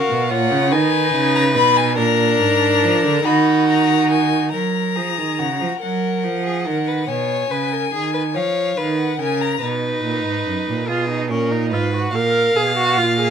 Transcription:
0.00 0.32 F#4 medium
0.00 0.30 A#4 medium
0.00 0.32 F5 medium
0.10 0.32 B2 medium
0.30 0.53 A#2 medium
0.30 0.72 F4 medium
0.30 0.73 C#5 medium
0.30 0.74 F#5 medium
0.51 0.74 C#3 medium
0.71 1.13 D#3 medium
0.71 1.95 D#4 medium
0.71 1.97 B4 medium
0.71 1.35 G#5 medium
1.14 1.56 C#3 medium
1.36 1.44 A#5 medium
1.55 1.99 B2 medium
1.55 1.78 B5 medium
1.77 1.98 G#5 medium
1.97 2.41 A#2 medium
1.97 3.23 D4 medium
1.97 3.27 A#4 medium
1.97 3.27 A#5 medium
2.40 2.84 G#2 medium
2.83 3.05 F3 medium
3.04 3.25 D3 medium
3.25 4.51 D#3 medium
3.25 4.51 D#4 medium
3.25 4.52 F#4 medium
3.25 3.67 B5 medium
3.68 4.09 A#5 medium
4.10 4.52 G#5 medium
4.53 4.98 F#3 medium
4.53 4.97 A#4 medium
4.53 5.77 A#5 medium
4.96 5.19 F3 medium
4.96 5.40 G#4 medium
5.18 5.41 D#3 medium
5.39 5.60 C#3 medium
5.39 5.80 F#4 medium
5.60 5.68 F3 medium
5.81 6.26 F#3 medium
5.81 6.44 A#4 medium
5.81 7.10 F#5 medium
6.24 6.68 F3 medium
6.45 6.68 G#4 medium
6.66 7.09 D#3 medium
6.66 6.89 A#4 medium
6.88 7.08 B4 medium
7.08 7.50 B2 medium
7.08 7.53 C#5 medium
7.08 8.38 G#5 medium
7.51 7.92 C#3 soft
7.51 7.74 B4 medium
7.72 7.92 A#4 medium
7.93 8.36 D#3 medium
7.93 8.13 G#4 medium
8.14 8.22 B4 medium
8.35 8.77 F3 medium
8.35 8.79 C#5 medium
8.35 8.98 F5 medium
8.78 9.19 D#3 medium
8.78 9.19 B4 medium
8.98 9.21 F#5 medium
9.19 9.61 C#3 medium
9.19 9.61 A#4 medium
9.19 9.42 G#5 medium
9.41 9.62 A#5 medium
9.61 10.03 B2 medium
9.61 10.84 D#4 medium
9.61 10.90 B4 medium
10.04 10.25 A#2 medium
10.26 10.46 G#2 medium
10.46 10.54 F#2 medium
10.67 10.90 A#2 medium
10.88 11.31 B2 medium
10.88 11.09 F4 medium
10.88 11.30 G#4 medium
11.09 11.30 D#4 medium
11.30 11.73 A#2 medium
11.30 11.52 C#4 medium
11.30 11.71 A#4 medium
11.51 11.74 D#4 medium
11.71 12.13 G#2 medium
11.71 11.93 F4 medium
11.71 12.13 B4 medium
11.94 12.16 F#4 medium
12.13 12.55 A#2 medium
12.13 12.58 A#4 medium
12.13 13.30 F5 medium
12.55 12.98 B2 medium
12.55 12.76 G#4 medium
12.77 12.99 F#4 medium
12.97 13.30 A#2 medium
12.97 13.18 F4 medium
13.19 13.30 G#4 medium

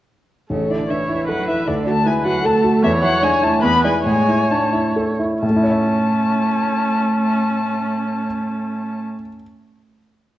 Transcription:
0.50 1.64 A1 soft
0.50 0.69 C#3 soft
0.50 0.87 A4 soft
0.50 0.72 C#5 soft
0.70 0.89 D3 soft
0.70 1.02 E4 soft
0.70 0.92 D5 medium
0.89 1.31 E3 soft
0.89 1.09 D4 soft
0.89 1.27 C#5 soft
0.89 1.28 E5 soft
1.09 1.40 E4 soft
1.28 1.50 F#3 medium
1.28 1.60 A4 soft
1.28 1.69 B4 soft
1.28 1.48 F#5 medium
1.48 1.67 E3 medium
1.48 1.67 E4 soft
1.48 1.69 E5 medium
1.67 2.80 D2 soft
1.67 1.88 D3 medium
1.67 2.05 A4 medium
1.67 1.87 D5 medium
1.86 2.07 A3 medium
1.86 2.18 F#4 soft
1.86 2.08 A5 medium
2.06 2.25 G#3 medium
2.06 2.25 E4 soft
2.06 2.44 B4 medium
2.06 2.26 G#5 medium
2.25 2.46 F#3 medium
2.25 2.56 F#4 medium
2.25 2.47 F#5 medium
2.44 2.85 A3 medium
2.44 2.85 A4 medium
2.44 2.76 A4 medium
2.44 2.83 A5 medium
2.64 2.83 F#4 soft
2.83 3.61 E2 medium
2.83 3.04 E3 medium
2.83 3.62 C#5 medium
2.83 2.92 E5 medium
3.03 3.21 F#3 medium
3.03 3.35 E4 soft
3.03 3.25 F#5 medium
3.22 3.30 G#3 medium
3.22 3.43 D4 medium
3.22 3.45 G#5 medium
3.43 3.65 A3 medium
3.43 3.64 E4 medium
3.43 3.63 A5 medium
3.63 4.05 E2 medium
3.63 3.84 B3 medium
3.63 4.05 B4 medium
3.63 3.84 B5 loud
3.84 3.93 G#3 medium
3.84 4.04 E4 soft
3.84 4.04 D5 soft
3.84 4.06 G#5 medium
4.05 5.39 A2 medium
4.05 4.49 G#3 medium
4.05 5.17 C#5 medium
4.05 4.52 G#5 medium
4.28 4.64 E4 soft
4.50 4.95 A3 medium
4.50 4.73 D4 soft
4.50 4.96 A5 medium
4.73 5.10 E4 soft
4.96 5.34 A4 medium
5.19 5.43 E4 medium
5.42 9.13 A2 medium
5.42 9.00 A3 medium
5.42 9.00 C#4 medium
5.42 9.00 A5 medium
5.50 9.21 A3 medium
5.56 9.27 E4 medium
5.63 9.34 C#5 medium
5.70 9.41 E5 medium

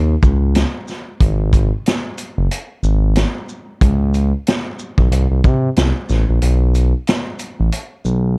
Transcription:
0.00 0.16 D#2 loud
0.23 0.64 C#2 medium
0.23 kick loud
0.23 shaker soft
0.55 snare loud
0.55 closed hi-hat medium
0.88 snare soft
0.88 shaker soft
1.20 1.71 G#1 loud
1.20 kick loud
1.20 closed hi-hat medium
1.53 kick medium
1.53 closed hi-hat soft
1.53 shaker medium
1.86 snare loud
1.86 closed hi-hat medium
2.18 closed hi-hat medium
2.18 shaker medium
2.38 2.48 F#1 medium
2.51 closed hi-hat medium
2.83 3.24 G#1 loud
2.83 shaker soft
3.16 snare loud
3.16 closed hi-hat medium
3.49 shaker soft
3.81 4.32 C#2 loud
3.81 kick loud
3.81 closed hi-hat medium
4.14 closed hi-hat soft
4.14 shaker soft
4.47 snare loud
4.47 closed hi-hat medium
4.79 shaker medium
4.98 5.09 B1 loud
4.98 kick medium
5.11 5.27 C2 loud
5.11 closed hi-hat medium
5.31 5.41 C2 medium
5.44 5.70 C3 loud
5.44 kick loud
5.44 shaker soft
5.76 5.92 C2 medium
5.76 snare loud
5.76 closed hi-hat medium
6.09 6.25 A1 loud
6.09 snare soft
6.09 shaker soft
6.29 6.39 A#1 medium
6.42 6.93 B1 loud
6.42 closed hi-hat medium
6.75 closed hi-hat soft
6.75 shaker medium
7.07 snare loud
7.07 closed hi-hat medium
7.39 closed hi-hat medium
7.39 shaker medium
7.60 7.70 A1 medium
7.72 closed hi-hat medium
8.05 8.38 B1 loud
8.05 shaker soft

